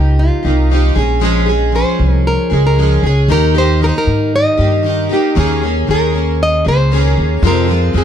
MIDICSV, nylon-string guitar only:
0, 0, Header, 1, 2, 480
1, 0, Start_track
1, 0, Tempo, 517241
1, 1133, Time_signature, 4, 2, 24, 8
1, 7462, End_track
2, 0, Start_track
2, 0, Title_t, "Nylon-string guitar"
2, 0, Program_c, 0, 24
2, 0, Note_on_c, 0, 67, 71
2, 179, Note_on_c, 0, 65, 79
2, 190, Note_off_c, 0, 67, 0
2, 859, Note_off_c, 0, 65, 0
2, 1630, Note_on_c, 0, 72, 73
2, 2069, Note_off_c, 0, 72, 0
2, 2108, Note_on_c, 0, 70, 94
2, 2436, Note_off_c, 0, 70, 0
2, 2474, Note_on_c, 0, 70, 76
2, 2799, Note_off_c, 0, 70, 0
2, 2844, Note_on_c, 0, 68, 77
2, 3075, Note_off_c, 0, 68, 0
2, 3078, Note_on_c, 0, 70, 97
2, 3313, Note_off_c, 0, 70, 0
2, 3325, Note_on_c, 0, 72, 88
2, 3556, Note_off_c, 0, 72, 0
2, 3563, Note_on_c, 0, 70, 80
2, 3604, Note_off_c, 0, 70, 0
2, 3608, Note_on_c, 0, 72, 62
2, 3668, Note_off_c, 0, 72, 0
2, 3693, Note_on_c, 0, 70, 95
2, 4039, Note_off_c, 0, 70, 0
2, 4042, Note_on_c, 0, 75, 93
2, 4711, Note_off_c, 0, 75, 0
2, 4766, Note_on_c, 0, 67, 65
2, 4997, Note_off_c, 0, 67, 0
2, 5003, Note_on_c, 0, 68, 84
2, 5478, Note_off_c, 0, 68, 0
2, 5482, Note_on_c, 0, 70, 83
2, 5962, Note_off_c, 0, 70, 0
2, 5965, Note_on_c, 0, 75, 106
2, 6196, Note_off_c, 0, 75, 0
2, 6203, Note_on_c, 0, 72, 91
2, 6636, Note_off_c, 0, 72, 0
2, 6931, Note_on_c, 0, 70, 79
2, 7360, Note_off_c, 0, 70, 0
2, 7404, Note_on_c, 0, 68, 76
2, 7462, Note_off_c, 0, 68, 0
2, 7462, End_track
0, 0, End_of_file